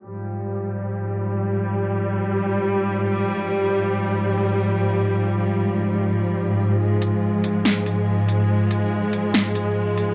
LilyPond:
<<
  \new Staff \with { instrumentName = "String section" } { \clef bass \time 4/4 \key f \minor \tempo 4 = 142 << { g1~ | g1~ | g1~ | g1 |
aes1~ | aes1 | } \\ { <aes, f>1~ | <aes, f>1~ | <aes, f>1~ | <aes, f>1~ |
<aes, f>1~ | <aes, f>1 | } >> }
  \new DrumStaff \with { instrumentName = "Drums" } \drummode { \time 4/4 r4 r4 r4 r4 | r4 r4 r4 r4 | r4 r4 r4 r4 | r4 r4 r4 r4 |
r8 hh8 r8 hh8 sn8 hh8 r8 hh8 | r8 hh8 r8 hh8 sn8 hh8 r8 hh8 | }
>>